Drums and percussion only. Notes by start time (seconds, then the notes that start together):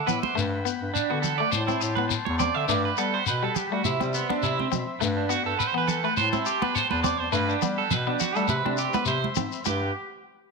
0.08 low conga, shekere
0.23 high conga
0.38 shekere
0.66 shekere
0.96 shekere
1.24 low conga, shekere
1.52 high conga, shekere
1.68 high conga, shekere
1.81 shekere
1.97 high conga
2.11 shekere
2.27 high conga
2.40 high conga, low conga, shekere
2.69 shekere
2.97 shekere
3.26 shekere
3.56 low conga, shekere
3.85 high conga, shekere
4.01 high conga, shekere
4.14 shekere
4.30 high conga
4.43 shekere
4.60 high conga
4.72 high conga, low conga, shekere
5.02 shekere
5.30 shekere
5.60 shekere
5.88 low conga, shekere
6.17 high conga, shekere
6.33 high conga, shekere
6.46 shekere
6.62 high conga
6.76 shekere
6.91 high conga
7.04 high conga, low conga, shekere
7.33 shekere
7.49 shekere
7.62 low conga, shekere
7.91 low conga, shekere
8.20 low conga, shekere
8.36 shekere
8.48 high conga, shekere
8.66 high conga
8.78 shekere
8.93 high conga, shekere
9.06 shekere
9.24 high conga
9.35 high conga, low conga, shekere
9.52 shekere
9.65 high conga, shekere